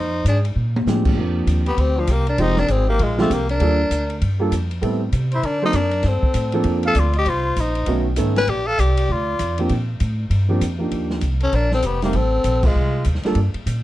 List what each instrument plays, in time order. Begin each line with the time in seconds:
Already playing: upright bass F2
0.00 tenor saxophone D#4, trumpet C5
0.25 upright bass G#2, tenor saxophone D4, trumpet G#4, kick, hi-hat pedal, ride
0.45 ride
0.56 upright bass A#2
0.76 high tom
0.86 upright bass A2, upright piano F3 G#3 C4 D4 G4, snare, hi-hat pedal
1.05 kick, crash
1.16 upright bass F2, upright piano F3 A#3 C4 D4 G4
1.47 upright bass D#2, kick, hi-hat pedal, ride
1.66 tenor saxophone B3, trumpet G4, ride
1.77 upright bass D2, tenor saxophone C4, trumpet G4, kick, ride
1.97 tenor saxophone F3, trumpet D4
2.07 upright bass C2, trumpet G4, kick, hi-hat pedal, ride
2.12 tenor saxophone A#3
2.27 tenor saxophone D4, trumpet A#4, ride
2.38 upright bass F1, upright piano F3 G#3 C4 D#4 G4, tenor saxophone D#4, trumpet C5, kick, ride
2.57 tenor saxophone D4, trumpet A#4, snare
2.68 upright bass G#1, tenor saxophone C4, trumpet G#4, kick, hi-hat pedal, ride
2.87 tenor saxophone A#3, trumpet G4
2.99 upright bass A#1, tenor saxophone G#3, trumpet F4, kick, ride
3.17 upright piano F3 G#3 C4 D4 G4, tenor saxophone A3, trumpet F4, snare
3.30 upright bass C2, tenor saxophone A#3, trumpet G4, kick, hi-hat pedal, ride
3.49 tenor saxophone D4, trumpet A#4, ride
3.60 upright bass D#2, upright piano G3 A#3 D4 F4 A4, kick, ride
3.90 upright bass D2, kick, hi-hat pedal, ride
4.10 ride
4.22 upright bass G2, kick, ride
4.40 upright piano G3 A#3 D4 F4 A4
4.52 upright bass F2, kick, hi-hat pedal, ride
4.71 ride
4.81 upright bass A2, upright piano G3 B3 C4 E4 A4, kick, ride
5.13 upright bass C3, kick, hi-hat pedal, ride
5.32 tenor saxophone E4, trumpet C5, ride
5.43 upright bass D3, tenor saxophone D4, trumpet A#4, kick, ride
5.62 upright piano F#3 A#3 C4 D4 A4, tenor saxophone D#4, trumpet C5
5.73 upright bass F#2, tenor saxophone D4, trumpet A#4, kick, hi-hat pedal, ride
5.91 ride
6.03 upright bass G2, trumpet A4, kick, snare, ride
6.08 tenor saxophone C4
6.23 muted upright bass stroke, kick
6.34 upright bass A2, kick, hi-hat pedal, ride
6.52 upright piano F3 A#3 C4 D4 A4, ride
6.64 upright bass F2, kick, ride
6.83 trumpet F5, ride
6.88 tenor saxophone A4
6.95 upright bass D2, trumpet D5, kick, hi-hat pedal, ride
7.00 tenor saxophone F4
7.13 trumpet D#5, ride
7.19 tenor saxophone G4
7.26 upright bass C2, tenor saxophone F4, trumpet C5, kick, ride
7.56 upright bass A#1, tenor saxophone D#4, trumpet C5, kick, hi-hat pedal, ride
7.75 ride
7.86 upright bass B1, upright piano D#3 A3 B3 C#4 F#4, kick, ride
8.16 upright bass G#1, upright piano D#3 A3 B3 C#4 A4, kick, hi-hat pedal, ride
8.36 tenor saxophone B4, trumpet G#5, snare, ride
8.47 upright bass A#1, tenor saxophone G4, trumpet D5, kick, ride
8.67 tenor saxophone A4, trumpet F5
8.79 upright bass C2, tenor saxophone G4, trumpet D5, kick, hi-hat pedal, ride
8.97 ride
9.09 upright bass D2, tenor saxophone F4, trumpet D5, kick
9.39 upright bass F2, kick, hi-hat pedal, ride
9.58 upright piano F3 A#3 C4 D4 G4, ride
9.69 upright bass A#2, kick, ride
10.00 upright bass A2, kick, hi-hat pedal, ride
10.30 upright bass G2, kick, ride
10.48 upright piano F3 A#3 C4 D4 G4
10.61 upright bass F2, kick, hi-hat pedal, ride
10.79 upright piano F3 A#3 D4 D#4 G4
10.91 upright bass D#2, kick, ride
11.10 snare
11.21 upright bass C2, kick, hi-hat pedal, ride
11.40 tenor saxophone C#4, trumpet A4, ride
11.52 upright bass A#1, tenor saxophone D4, trumpet A#4, kick, ride
11.71 tenor saxophone C4, trumpet A4, snare
11.82 upright bass F1, tenor saxophone B3, trumpet G4, kick, hi-hat pedal, ride
12.02 upright piano G3 A3 C4 D#4 G4, tenor saxophone A#3, trumpet G4, snare, ride
12.13 upright bass A1, tenor saxophone C4, trumpet A4, kick, ride
12.44 upright bass A#1, kick, hi-hat pedal, ride
12.63 tenor saxophone G#3, trumpet F4, kick, crash
12.75 upright bass C2
13.05 upright bass D#2, kick, hi-hat pedal, ride
13.15 snare
13.23 upright piano G3 A#3 D4 F4 A4, muted upright bass stroke, snare, ride
13.35 upright bass G2, kick, ride
13.54 muted upright bass stroke, ride
13.66 upright bass A#2, kick, hi-hat pedal, ride